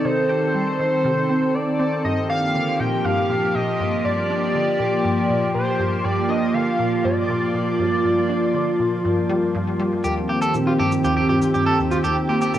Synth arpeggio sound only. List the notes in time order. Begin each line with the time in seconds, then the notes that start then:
0.05 C3
0.29 G4
0.54 G3
0.79 D#3
1.05 C3
1.29 C4
1.55 C4
1.79 C4
2.04 G2
2.29 D4
2.55 D3
2.80 A#2
3.04 G2
3.29 A#2
3.55 A#2
3.80 G2
4.05 G2
4.30 D4
4.55 D3
4.79 A#2
5.04 G2
5.30 A#2
5.55 A#2
5.79 G2
6.05 G2
6.29 D4
6.54 D3
6.79 A#2
7.04 G2
7.29 A#2
7.54 A#2
7.79 G2
8.04 G2
8.29 D4
8.54 D3
8.79 A#2
9.05 G2
9.29 G3
9.55 G2
9.79 G3
10.04 D#2
10.29 A#3
10.54 A#2
10.79 G2
11.04 D#2
11.29 G2
11.55 G2
11.80 D#2
12.05 D#2
12.30 A#3
12.54 A#2